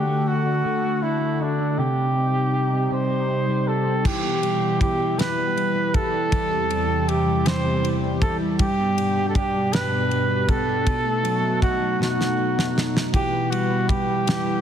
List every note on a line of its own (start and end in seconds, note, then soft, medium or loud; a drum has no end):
0.00 0.63 D3 medium
0.00 1.75 D3 medium
0.00 1.73 A3 medium
0.00 0.45 D4 soft
0.00 0.29 G4 medium
0.00 1.76 A4 medium
0.00 1.75 F#5 medium
0.08 0.82 A3 soft
0.27 0.64 F#4 medium
0.27 1.04 F#4 medium
0.46 1.01 D4 soft
0.64 1.86 D3 medium
0.64 1.38 F#4 medium
0.83 1.19 A3 soft
1.02 1.57 D4 soft
1.02 1.43 E4 medium
1.21 1.85 A3 soft
1.40 1.80 D4 medium
1.40 1.77 F#4 soft
1.58 1.85 D4 soft
1.77 2.89 C3 medium
1.77 4.03 C3 medium
1.77 4.03 G3 medium
1.77 4.03 D#4 medium
1.77 2.52 G4 medium
1.77 2.92 G4 medium
1.77 4.02 G4 medium
1.96 2.33 G3 soft
2.15 2.71 C4 soft
2.34 3.09 G3 soft
2.53 2.90 G4 soft
2.72 3.27 C4 soft
2.90 4.12 C3 medium
2.90 3.66 G4 medium
2.90 3.69 C5 medium
3.09 3.48 G3 soft
3.28 3.84 C4 soft
3.48 4.41 G3 soft
3.66 4.79 G4 soft
3.66 4.08 A4 medium
3.85 4.12 C4 soft
4.03 6.29 B2 medium
4.03 5.17 E3 medium
4.03 10.82 G3 medium
4.03 8.55 E4 medium
4.03 10.82 G4 medium
4.03 4.81 G4 medium
4.03 kick medium
4.03 crash medium
4.23 4.60 B3 medium
4.42 4.97 G3 medium
4.42 ride soft
4.61 5.35 B3 medium
4.79 5.93 E4 medium
4.79 5.20 G4 medium
4.79 kick medium
4.79 ride soft
4.98 5.55 G3 medium
5.17 6.31 E3 medium
5.17 5.96 B4 medium
5.17 snare medium
5.17 ride medium
5.36 5.73 B3 medium
5.55 6.11 G3 medium
5.55 ride soft
5.74 6.39 B3 medium
5.93 7.07 E4 medium
5.93 7.10 A4 medium
5.93 kick medium
5.93 ride soft
6.12 6.69 G3 medium
6.31 8.57 E2 medium
6.31 8.57 C3 medium
6.31 7.45 E3 medium
6.31 kick medium
6.31 ride medium
6.50 6.87 C4 medium
6.69 7.26 G3 medium
6.69 ride soft
6.89 7.63 C4 medium
7.07 8.21 E4 medium
7.07 7.48 G4 medium
7.07 ride soft
7.26 7.83 G3 medium
7.46 8.67 E3 medium
7.46 7.95 C5 medium
7.46 snare medium
7.46 ride medium
7.64 8.02 C4 medium
7.83 8.40 G3 medium
7.83 ride soft
8.03 8.67 C4 medium
8.22 8.67 E4 medium
8.22 8.38 A4 medium
8.22 kick medium
8.22 ride soft
8.41 8.97 G3 medium
8.59 9.72 G2 medium
8.59 10.84 B2 medium
8.59 10.84 D4 medium
8.59 9.24 G4 medium
8.59 kick loud
8.59 ride medium
8.79 9.16 B3 medium
8.98 9.53 G3 medium
8.98 ride soft
9.16 9.92 B3 medium
9.29 9.37 A4 medium
9.35 10.47 D4 medium
9.35 9.75 G4 medium
9.35 kick medium
9.35 ride soft
9.55 10.09 G3 medium
9.73 10.86 G2 medium
9.73 10.51 B4 medium
9.73 snare medium
9.73 ride medium
9.92 10.29 B3 medium
10.10 10.65 G3 medium
10.10 ride soft
10.29 11.04 B3 medium
10.48 10.94 D4 medium
10.48 11.62 A4 medium
10.48 kick medium
10.48 ride soft
10.66 10.93 G3 medium
10.85 11.98 B2 medium
10.85 14.61 B2 medium
10.85 13.12 A3 medium
10.85 13.12 D#4 medium
10.85 13.12 F#4 loud
10.85 kick medium
10.85 ride medium
11.04 11.41 A3 medium
11.23 11.79 F#3 medium
11.23 ride soft
11.42 12.16 A3 medium
11.61 12.74 D#4 medium
11.61 11.97 F#4 medium
11.61 kick medium
11.61 ride soft
11.80 12.36 F#3 medium
11.99 13.12 B2 medium
11.99 12.82 F#4 medium
11.99 snare medium
12.18 12.55 A3 soft
12.18 snare soft
12.37 12.93 F#3 medium
12.56 13.20 A3 medium
12.56 snare medium
12.75 13.21 D#4 medium
12.75 snare medium
12.94 13.21 F#3 medium
12.94 snare medium
13.13 14.26 E3 medium
13.13 14.61 G3 medium
13.13 14.61 E4 medium
13.13 13.52 G4 medium
13.13 14.61 B4 medium
13.13 kick medium
13.13 ride medium
13.32 13.69 B3 medium
13.50 14.07 G3 medium
13.50 13.90 F#4 medium
13.50 ride soft
13.70 14.45 B3 medium
13.88 14.61 E4 medium
13.88 14.61 G4 medium
13.88 kick medium
13.88 ride soft
14.08 14.61 G3 medium
14.27 14.61 E3 medium
14.27 snare loud
14.27 ride medium
14.46 14.61 B3 medium